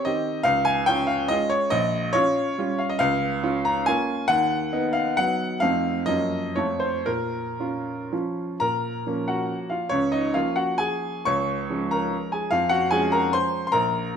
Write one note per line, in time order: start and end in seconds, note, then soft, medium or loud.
0.05 0.42 D#3 medium
0.05 0.42 C4 medium
0.05 0.43 G4 medium
0.05 0.46 D#5 loud
0.43 0.86 C#2 medium
0.43 0.66 F5 loud
0.65 0.87 G#5 loud
0.86 1.27 C#4 medium
0.86 1.27 F4 medium
0.86 1.09 G5 loud
1.07 1.29 F5 loud
1.28 1.67 G#3 medium
1.28 1.67 C#4 medium
1.28 1.68 F4 medium
1.28 1.50 D#5 loud
1.50 1.71 C#5 loud
1.70 2.12 A#1 loud
1.70 2.13 D#5 loud
2.13 2.55 C#4 medium
2.13 2.55 F4 medium
2.13 2.79 C#5 loud
2.58 2.96 G3 medium
2.58 2.97 C#4 medium
2.58 2.97 F4 medium
2.79 2.90 F5 medium
2.90 3.00 D#5 loud
2.99 3.42 C#2 loud
2.99 3.65 F5 loud
3.43 3.83 C#4 medium
3.43 3.83 F4 medium
3.65 3.86 A#5 loud
3.86 4.25 A#3 medium
3.86 4.25 C#4 medium
3.86 4.26 F4 medium
3.86 4.29 G#5 loud
4.28 4.71 D#2 medium
4.28 4.94 F#5 loud
4.73 5.14 B3 medium
4.73 5.14 D#4 medium
4.93 5.16 F5 loud
5.17 5.57 F#3 medium
5.17 5.58 B3 medium
5.17 5.58 D#4 medium
5.17 5.61 F#5 loud
5.60 6.06 F2 medium
5.60 6.03 A3 medium
5.60 6.03 C4 medium
5.60 6.04 D#4 medium
5.60 6.06 F5 loud
6.06 6.55 F#2 medium
6.06 6.52 F3 medium
6.06 6.53 A#3 medium
6.06 6.53 C#4 medium
6.06 6.56 D#5 loud
6.56 7.06 F2 medium
6.56 7.03 F3 soft
6.56 7.03 A3 medium
6.56 7.04 F4 medium
6.56 6.81 C#5 medium
6.80 7.06 C5 medium
7.06 7.58 A#2 medium
7.06 8.11 A#4 loud
7.60 8.08 C#4 medium
7.60 8.08 F4 medium
8.12 8.57 F3 medium
8.12 8.57 C#4 medium
8.12 8.57 F4 medium
8.60 9.05 A#2 medium
8.60 9.25 A#4 medium
8.60 9.28 A#5 loud
9.07 9.88 F3 soft
9.07 9.88 A#3 medium
9.07 9.88 C#4 medium
9.28 9.68 F#4 medium
9.28 9.71 F#5 medium
9.70 9.90 F4 medium
9.70 9.91 F5 medium
9.89 10.33 C#2 medium
9.89 10.11 C#4 medium
9.89 10.11 C#5 loud
10.12 10.33 D#4 medium
10.12 10.34 D#5 loud
10.34 11.23 F3 medium
10.34 11.23 A#3 medium
10.34 11.24 C#4 medium
10.34 10.55 F4 medium
10.34 10.56 F5 medium
10.56 10.77 F#4 medium
10.56 10.78 F#5 medium
10.78 11.24 G#4 medium
10.78 11.26 G#5 loud
11.25 11.68 C#2 medium
11.25 11.87 C#5 medium
11.25 11.91 C#6 loud
11.70 12.48 F3 medium
11.70 12.48 G#3 medium
11.70 12.48 C#4 medium
11.91 12.30 A#4 medium
11.91 12.32 A#5 loud
12.32 12.51 G#4 medium
12.32 12.51 G#5 medium
12.51 12.90 F2 medium
12.51 12.70 F4 medium
12.51 12.70 F5 loud
12.69 12.90 F#4 medium
12.69 12.91 F#5 loud
12.91 13.69 F3 medium
12.91 13.69 G#3 medium
12.91 13.69 C#4 medium
12.91 13.11 G#4 medium
12.91 13.12 G#5 loud
13.12 13.32 A#4 medium
13.12 13.33 A#5 loud
13.33 13.65 C5 medium
13.33 13.65 C6 loud
13.67 13.73 C6 medium
13.72 14.13 A#1 medium
13.72 14.16 A#4 medium
13.72 14.16 A#5 loud